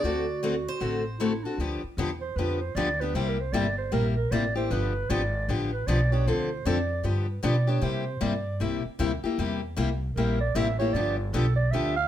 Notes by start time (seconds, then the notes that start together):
Already playing: D5
0.03 D2 D3 A3 C4 F#4 A4
0.43 D3 A3 C4 F#4 A4
0.68 C5
0.80 A1 D3 A3 C4 F#4 A4
1.19 D3 A3 C4 E4 F#4 A4
1.44 C4 D4 F#4 A4
1.58 D2 D3 F3 B3 D4 G4
1.83 muted upright bass stroke
1.97 E2 D3 F3 B3 D4 G4
2.21 C5
2.36 F2 D3 F3 B3 D4 G4 B4
2.61 C5
2.75 D2 D3 F3 B3 D4 G4 D5
3.00 B3 D4 G4 B4
3.14 C2 C3 G3 A#3 E4 G4 C5
3.28 A#4
3.40 C5
3.53 G1 C3 G3 A#3 E4 G4 D5
3.78 C5
3.92 A#1 C3 G3 A#3 E4 G4 A#4
4.16 A#4
4.31 A1 C3 G3 A#3 E4 G4 D5
4.55 A#3 E4 G4 C5
4.70 G1 D3 F3 B3 D4 G4 B4
5.09 G#1 D3 F3 B3 D4 G4 D5
5.48 A1 D3 F3 B3 D4 G4
5.73 B4
5.87 B1 D3 F3 B3 D4 G4 D5
6.12 B3 D4 G4 C#5
6.26 D2 D3 F3 C4 D4 A4 C5
6.65 F2 D3 F3 C4 D4 A4 D5
7.03 G2 D3 F3 B3 D4 G4
7.30 B4
7.43 B2 D3 F3 B3 D4 G4 D5
7.67 B3 D4 G4 C#5
7.81 C3 G3 A#3 E4 G4 C5
8.21 G2 C3 G3 A#3 E4 G4 D5
8.60 C2 C3 G3 A#3 E4 G4
8.85 muted upright bass stroke
8.99 D2 C3 G3 A#3 E4 G4
9.24 A#3 E4 G4, muted upright bass stroke
9.38 E2 C3 G3 A#3 E4 G4
9.76 C2 C3 G3 A#3 E4 G4
10.16 A#1 C3 G3 A#3 E4 G4 A#4
10.41 D5
10.55 A1 C3 G3 A#3 E4 G4 E5
10.79 A#3 E4 G4 C#5
10.93 G1 D3 F3 B3 D4 G4 D5
11.18 F4
11.33 B1 D3 F3 B3 D4 G4 A4
11.56 D5
11.71 D2 D3 F3 B3 D4 G4 E5
11.96 F5